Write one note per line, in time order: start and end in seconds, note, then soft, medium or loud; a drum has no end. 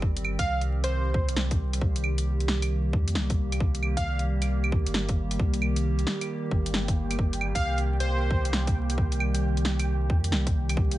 0.00 0.37 G1 medium
0.00 10.98 D#3 medium
0.00 10.98 G3 medium
0.00 1.77 C4 medium
0.00 10.98 G4 medium
0.00 kick loud
0.17 closed hi-hat soft
0.25 claves medium
0.39 2.95 C2 medium
0.39 0.62 F5 medium
0.39 kick medium
0.39 closed hi-hat medium
0.61 closed hi-hat soft
0.84 1.45 C5 medium
0.84 closed hi-hat medium
1.14 kick loud
1.29 closed hi-hat medium
1.36 snare loud
1.51 kick loud
1.51 closed hi-hat soft
1.73 closed hi-hat medium
1.81 10.98 A#3 medium
1.81 kick loud
1.96 closed hi-hat soft
2.04 claves medium
2.18 closed hi-hat medium
2.40 closed hi-hat soft
2.48 snare loud
2.62 closed hi-hat medium
2.62 claves soft
2.93 3.17 F2 medium
2.93 kick loud
3.08 closed hi-hat medium
3.15 3.37 C2 medium
3.15 snare loud
3.30 kick loud
3.30 closed hi-hat soft
3.38 4.86 C2 medium
3.52 closed hi-hat medium
3.52 claves soft
3.60 kick loud
3.75 closed hi-hat soft
3.83 claves medium
3.97 4.20 F5 medium
3.97 kick medium
3.97 closed hi-hat medium
4.19 closed hi-hat soft
4.42 closed hi-hat medium
4.42 claves soft
4.64 claves medium
4.72 kick loud
4.86 5.38 G1 medium
4.86 closed hi-hat soft
4.94 snare loud
5.09 kick loud
5.09 closed hi-hat soft
5.31 closed hi-hat medium
5.39 6.06 C2 loud
5.39 10.98 G5 medium
5.39 kick loud
5.54 closed hi-hat soft
5.62 claves medium
5.76 closed hi-hat medium
5.99 closed hi-hat soft
6.07 snare loud
6.21 closed hi-hat soft
6.21 claves soft
6.51 7.53 G1 medium
6.51 kick loud
6.66 closed hi-hat soft
6.74 snare loud
6.88 kick loud
6.88 closed hi-hat soft
7.11 closed hi-hat medium
7.11 claves soft
7.19 kick loud
7.33 closed hi-hat soft
7.41 claves medium
7.55 10.11 C2 medium
7.55 7.78 F5 medium
7.55 kick medium
7.55 closed hi-hat medium
7.78 closed hi-hat soft
8.00 8.62 C5 loud
8.00 closed hi-hat soft
8.31 kick loud
8.45 closed hi-hat soft
8.53 snare loud
8.67 kick loud
8.67 closed hi-hat soft
8.90 closed hi-hat medium
8.98 kick loud
9.12 closed hi-hat soft
9.20 claves medium
9.35 closed hi-hat medium
9.57 closed hi-hat soft
9.65 snare medium
9.80 closed hi-hat medium
9.80 claves soft
10.10 10.33 F2 medium
10.10 kick loud
10.24 closed hi-hat medium
10.32 10.53 C2 medium
10.32 snare loud
10.47 kick medium
10.47 closed hi-hat soft
10.54 10.98 C2 loud
10.69 closed hi-hat medium
10.69 claves soft
10.77 kick loud
10.91 closed hi-hat soft